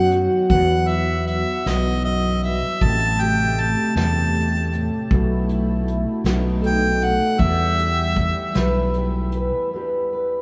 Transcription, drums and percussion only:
0.11 closed hi-hat soft
0.50 kick medium
0.50 closed hi-hat medium
0.89 closed hi-hat soft
1.27 closed hi-hat soft
1.66 snare medium
1.66 closed hi-hat medium
2.05 closed hi-hat soft
2.43 closed hi-hat soft
2.81 kick medium
2.81 closed hi-hat medium
3.20 closed hi-hat soft
3.58 closed hi-hat soft
3.96 snare medium
3.96 closed hi-hat medium
4.34 closed hi-hat soft
4.73 closed hi-hat soft
5.11 kick medium
5.11 closed hi-hat medium
5.49 closed hi-hat soft
5.88 closed hi-hat soft
6.25 snare medium
6.25 closed hi-hat medium
6.63 closed hi-hat soft
7.01 closed hi-hat soft
7.39 kick medium
7.39 closed hi-hat medium
7.78 closed hi-hat soft
8.16 kick medium
8.16 closed hi-hat soft
8.54 snare medium
8.54 closed hi-hat medium
8.94 closed hi-hat soft
9.32 closed hi-hat soft

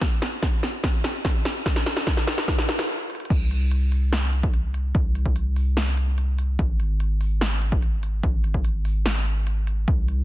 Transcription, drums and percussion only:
0.01 kick medium
0.01 snare medium
0.01 closed hi-hat medium
0.22 snare medium
0.22 closed hi-hat medium
0.43 kick loud
0.43 snare medium
0.43 closed hi-hat medium
0.63 snare medium
0.63 closed hi-hat medium
0.84 kick loud
0.84 snare medium
0.84 closed hi-hat medium
1.04 snare medium
1.04 closed hi-hat medium
1.25 kick loud
1.25 snare medium
1.25 closed hi-hat medium
1.45 snare medium
1.45 closed hi-hat soft
1.49 closed hi-hat medium
1.52 closed hi-hat medium
1.66 kick loud
1.66 snare medium
1.66 closed hi-hat medium
1.76 snare medium
1.86 snare medium
1.86 closed hi-hat medium
1.97 snare medium
2.07 kick loud
2.07 snare medium
2.07 closed hi-hat medium
2.17 snare medium
2.27 snare loud
2.27 closed hi-hat medium
2.38 snare medium
2.48 kick loud
2.48 snare loud
2.48 closed hi-hat medium
2.58 snare medium
2.69 snare loud
2.69 closed hi-hat medium
2.79 snare medium
3.10 closed hi-hat medium
3.15 closed hi-hat medium
3.20 closed hi-hat medium
3.25 closed hi-hat medium
3.30 kick loud
3.30 closed hi-hat medium
3.30 crash loud
3.51 closed hi-hat medium
3.71 closed hi-hat medium
3.92 open hi-hat medium
4.13 snare loud
4.13 closed hi-hat medium
4.33 closed hi-hat medium
4.43 kick loud
4.54 closed hi-hat medium
4.74 closed hi-hat medium
4.95 kick loud
4.95 closed hi-hat medium
5.15 closed hi-hat medium
5.26 kick medium
5.36 closed hi-hat medium
5.56 open hi-hat medium
5.77 snare loud
5.77 closed hi-hat medium
5.97 closed hi-hat medium
6.18 closed hi-hat medium
6.39 closed hi-hat medium
6.59 kick loud
6.59 closed hi-hat medium
6.80 closed hi-hat medium
7.00 closed hi-hat medium
7.21 open hi-hat medium
7.41 snare loud
7.41 closed hi-hat medium
7.62 closed hi-hat medium
7.72 kick loud
7.82 closed hi-hat medium
8.03 closed hi-hat medium
8.23 kick loud
8.23 closed hi-hat medium
8.44 closed hi-hat medium
8.54 kick medium
8.65 closed hi-hat medium
8.85 open hi-hat medium
9.06 snare loud
9.06 closed hi-hat medium
9.26 closed hi-hat medium
9.47 closed hi-hat medium
9.67 closed hi-hat medium
9.88 kick loud
9.88 closed hi-hat medium
10.08 closed hi-hat medium

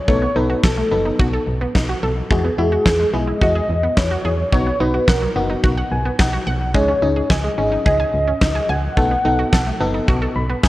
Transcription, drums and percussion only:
0.08 kick loud
0.63 kick loud
0.63 snare loud
1.19 kick loud
1.75 kick loud
1.75 snare loud
2.30 kick loud
2.86 kick loud
2.86 snare loud
3.42 kick loud
3.97 kick loud
3.97 snare loud
4.52 kick medium
5.08 kick loud
5.08 snare loud
5.64 kick loud
6.19 kick loud
6.19 snare loud
6.75 kick loud
7.30 kick loud
7.30 snare loud
7.86 kick loud
8.41 kick loud
8.41 snare loud
8.97 kick loud
9.52 kick loud
9.52 snare loud
10.08 kick loud
10.64 kick loud
10.64 snare loud

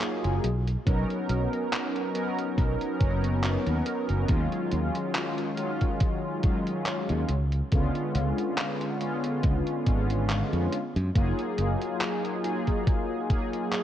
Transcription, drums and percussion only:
0.01 clap loud
0.01 closed hi-hat medium
0.24 closed hi-hat soft
0.44 closed hi-hat medium
0.67 closed hi-hat medium
0.87 kick loud
0.87 closed hi-hat medium
1.10 closed hi-hat soft
1.29 closed hi-hat medium
1.53 closed hi-hat medium
1.73 clap loud
1.73 closed hi-hat medium
1.96 closed hi-hat soft
2.15 closed hi-hat medium
2.39 closed hi-hat medium
2.58 kick loud
2.58 closed hi-hat medium
2.81 closed hi-hat soft
3.01 kick loud
3.01 closed hi-hat medium
3.24 closed hi-hat medium
3.44 clap loud
3.44 closed hi-hat medium
3.67 closed hi-hat soft
3.86 closed hi-hat medium
4.09 closed hi-hat soft
4.29 kick loud
4.29 closed hi-hat medium
4.52 closed hi-hat soft
4.72 closed hi-hat medium
4.95 closed hi-hat soft
5.15 clap loud
5.15 closed hi-hat medium
5.38 closed hi-hat soft
5.57 closed hi-hat medium
5.81 kick medium
5.81 closed hi-hat medium
6.00 kick loud
6.00 closed hi-hat medium
6.43 kick loud
6.43 closed hi-hat medium
6.67 closed hi-hat medium
6.86 clap loud
6.86 closed hi-hat medium
7.09 closed hi-hat soft
7.29 closed hi-hat medium
7.52 closed hi-hat soft
7.72 kick loud
7.72 closed hi-hat medium
7.95 closed hi-hat soft
8.15 closed hi-hat medium
8.38 closed hi-hat medium
8.58 clap loud
8.58 closed hi-hat medium
8.81 closed hi-hat soft
9.01 closed hi-hat medium
9.24 closed hi-hat soft
9.43 kick loud
9.43 closed hi-hat medium
9.67 closed hi-hat soft
9.87 kick loud
9.87 closed hi-hat medium
10.10 closed hi-hat medium
10.29 clap loud
10.29 closed hi-hat medium
10.53 closed hi-hat soft
10.72 closed hi-hat medium
10.96 closed hi-hat soft
11.15 kick loud
11.15 closed hi-hat medium
11.39 closed hi-hat soft
11.58 closed hi-hat medium
11.82 closed hi-hat medium
12.01 clap loud
12.01 closed hi-hat medium
12.25 closed hi-hat soft
12.44 closed hi-hat medium
12.67 kick medium
12.67 closed hi-hat medium
12.87 kick loud
12.87 closed hi-hat medium
13.30 kick loud
13.30 closed hi-hat medium
13.53 closed hi-hat medium
13.72 clap loud
13.72 closed hi-hat medium

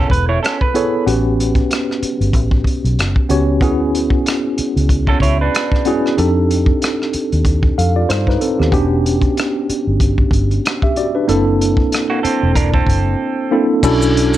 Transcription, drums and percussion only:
0.10 kick medium
0.10 closed hi-hat medium
0.44 cross-stick loud
0.44 closed hi-hat medium
0.61 kick medium
0.75 closed hi-hat medium
1.07 closed hi-hat medium
1.40 closed hi-hat medium
1.55 kick medium
1.55 closed hi-hat soft
1.71 cross-stick medium
1.71 closed hi-hat medium
1.91 cross-stick soft
2.03 closed hi-hat medium
2.21 closed hi-hat soft
2.33 kick medium
2.33 closed hi-hat medium
2.51 kick medium
2.64 kick medium
2.64 closed hi-hat medium
2.85 closed hi-hat soft
2.99 cross-stick medium
2.99 closed hi-hat medium
3.16 kick medium
3.30 closed hi-hat medium
3.61 kick medium
3.61 closed hi-hat medium
3.95 closed hi-hat medium
4.10 kick medium
4.26 cross-stick medium
4.26 closed hi-hat medium
4.58 closed hi-hat soft
4.77 closed hi-hat soft
4.89 kick medium
4.89 closed hi-hat medium
5.07 kick medium
5.20 kick medium
5.20 closed hi-hat medium
5.55 cross-stick loud
5.55 closed hi-hat medium
5.72 kick medium
5.72 cross-stick soft
5.85 closed hi-hat medium
6.06 cross-stick soft
6.18 closed hi-hat medium
6.51 closed hi-hat medium
6.66 kick medium
6.82 cross-stick medium
6.82 closed hi-hat medium
7.02 cross-stick soft
7.13 closed hi-hat soft
7.32 closed hi-hat soft
7.45 kick medium
7.45 closed hi-hat medium
7.63 kick medium
7.79 closed hi-hat medium
8.10 cross-stick loud
8.10 closed hi-hat medium
8.27 kick medium
8.27 cross-stick soft
8.41 closed hi-hat medium
8.62 cross-stick soft
8.72 kick medium
8.72 closed hi-hat medium
9.06 closed hi-hat medium
9.22 kick medium
9.22 closed hi-hat soft
9.37 cross-stick medium
9.37 closed hi-hat medium
9.70 closed hi-hat medium
10.00 kick medium
10.00 closed hi-hat medium
10.18 kick medium
10.31 kick medium
10.31 closed hi-hat medium
10.51 closed hi-hat soft
10.65 cross-stick loud
10.65 closed hi-hat medium
10.82 kick medium
10.96 closed hi-hat medium
11.29 closed hi-hat medium
11.61 closed hi-hat medium
11.77 kick medium
11.92 cross-stick medium
11.92 closed hi-hat medium
12.25 closed hi-hat medium
12.56 kick medium
12.56 closed hi-hat medium
12.74 kick medium
12.87 kick medium
12.87 closed hi-hat medium
13.83 kick loud
13.83 crash loud
13.83 maracas medium
14.02 maracas soft
14.17 closed hi-hat medium
14.34 maracas soft

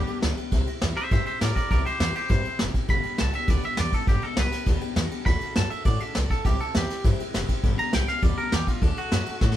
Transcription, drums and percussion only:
0.08 ride medium
0.22 snare loud
0.22 ride medium
0.37 ride medium
0.52 kick loud
0.52 ride medium
0.67 ride medium
0.81 snare loud
0.81 ride medium
0.97 ride medium
1.11 kick loud
1.11 ride medium
1.26 ride medium
1.41 snare loud
1.41 ride medium
1.56 kick medium
1.56 ride medium
1.71 kick loud
1.71 ride medium
1.86 ride medium
2.00 snare loud
2.00 ride loud
2.15 ride medium
2.29 kick loud
2.29 ride medium
2.45 ride medium
2.59 snare loud
2.59 ride medium
2.74 kick medium
2.74 ride medium
2.88 kick loud
2.88 ride medium
3.03 ride medium
3.18 snare loud
3.18 ride medium
3.33 ride medium
3.48 kick loud
3.48 ride medium
3.63 ride medium
3.77 snare loud
3.77 ride medium
3.92 kick medium
3.92 ride medium
4.07 kick loud
4.07 ride medium
4.22 ride medium
4.37 snare loud
4.37 ride medium
4.52 snare soft
4.52 ride medium
4.66 kick loud
4.66 ride medium
4.81 ride medium
4.96 snare loud
4.96 ride medium
5.11 ride medium
5.26 kick loud
5.26 ride medium
5.41 ride medium
5.56 snare loud
5.56 ride medium
5.71 ride medium
5.85 kick loud
5.85 ride medium
6.00 ride medium
6.15 snare loud
6.15 ride medium
6.30 kick medium
6.30 ride medium
6.45 kick loud
6.45 ride medium
6.60 ride medium
6.75 snare loud
6.75 ride medium
6.90 snare soft
6.90 ride medium
7.05 kick loud
7.05 ride loud
7.20 ride medium
7.34 snare loud
7.34 ride loud
7.49 kick medium
7.49 ride medium
7.63 kick loud
7.63 ride medium
7.78 ride medium
7.93 snare loud
7.93 ride medium
8.08 snare soft
8.08 ride medium
8.22 kick loud
8.22 ride medium
8.38 ride medium
8.52 snare loud
8.52 ride medium
8.67 kick medium
8.67 ride medium
8.82 kick loud
8.82 ride medium
8.97 ride medium
9.12 snare loud
9.12 ride medium
9.26 ride medium
9.41 kick loud
9.41 snare medium
9.52 snare medium

